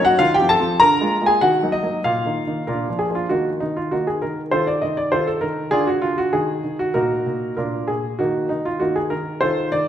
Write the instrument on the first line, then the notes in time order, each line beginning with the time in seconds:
grand piano
0.00 F#3 A#3 D#4
0.05 F#4 F#5
0.19 D#3 F4 F5
0.34 G4 G5
0.40 F3 C4 F4
0.49 A4 A5
0.60 F3 C4 F4
0.80 D3 A#4 A#5
1.01 G#3 A#3 F4
1.21 G#3 A#3 F4
1.26 G#4 G#5
1.41 D#3 F#4 F#5
1.63 F#3 A#3 D#4
1.72 D#4 D#5
1.83 F#3 A#3 D#4
2.04 A#2 F4 F5
2.26 D#3 A#3 D#4
2.47 D#3 A#3 D#4
2.67 A#2 D4 F4 A#4
2.89 F3 A#3 D4
2.99 G#4
3.10 F3 A#3 D4
3.15 F4
3.29 D#3 A#3 D#4 F#4
3.60 D#3 D#4
3.76 F4
3.91 D#3 A#3 D#4 F#4
4.07 G#4
4.22 D#3 A#4
4.51 D#3 F4 A4 C5
4.67 D5
4.82 D#3 D#5
4.97 D5
5.12 D#3 F4 A4 C5
5.27 A4
5.41 D#3 A#4
5.71 D3 D4 F4 G#4
5.87 F#4
6.02 D3 F4
6.18 F#4
6.33 D#3 G#4
6.64 D#3
6.79 F#4
6.94 A#2 D#4 F#4 A#4
7.26 A#2
7.57 A#2 D4 F4 A#4
7.88 A#2 G#4
8.19 D#3 A#3 D#4 F#4
8.49 D#3 D#4
8.65 F4
8.80 D#3 A#3 D#4 F#4
8.96 G#4
9.10 D#3 A#4
9.41 D#3 F4 A4 C5
9.72 D#3 D5